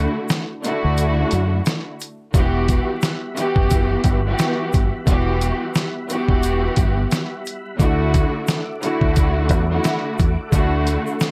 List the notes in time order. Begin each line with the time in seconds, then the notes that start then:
Already playing: D3 A3 E4 F#4
0.29 snare, closed hi-hat, shaker
0.63 D3 A3 E4 F#4, closed hi-hat, shaker
0.85 D2
0.98 closed hi-hat, shaker
1.31 F#2, closed hi-hat, shaker
1.66 snare, closed hi-hat, shaker
2.00 closed hi-hat, shaker
2.33 E1 E3 G3 B3 F#4 G4 E5 F#5 B5, kick, closed hi-hat, shaker
2.68 kick, closed hi-hat, shaker
3.02 snare, closed hi-hat, shaker
3.35 E3 B3 F#4 G4, closed hi-hat, shaker
3.56 F#1, kick
3.70 kick, closed hi-hat, shaker
4.04 G1, kick, closed hi-hat, shaker
4.26 E3 B3 F#4 G4
4.39 snare, closed hi-hat, shaker
4.73 G1, kick, closed hi-hat, shaker
5.06 E1 E3 B3 F#4 G4, kick, closed hi-hat, shaker
5.41 closed hi-hat, shaker
5.74 snare, closed hi-hat, shaker
6.08 E3 B3 F#4 G4, closed hi-hat, shaker
6.29 E1, kick
6.43 closed hi-hat, shaker
6.76 G1, kick, closed hi-hat, shaker
7.11 snare, closed hi-hat, shaker
7.46 closed hi-hat, shaker
7.77 D2 D3 A3 E4 F#4 A4 D6, kick, closed hi-hat, shaker
8.14 kick, closed hi-hat, shaker
8.47 snare, closed hi-hat, shaker
8.81 D3 A3 E4 F#4, closed hi-hat, shaker
9.01 D2, kick
9.16 kick, closed hi-hat, shaker
9.49 E2, kick, closed hi-hat, shaker
9.70 D3 A3 E4 F#4
9.84 snare, closed hi-hat, shaker
10.18 E2, kick, closed hi-hat, shaker
10.51 D2 D3 A3 E4 F#4 C6, kick, closed hi-hat, shaker
10.87 closed hi-hat, shaker
11.07 shaker
11.20 snare, closed hi-hat, shaker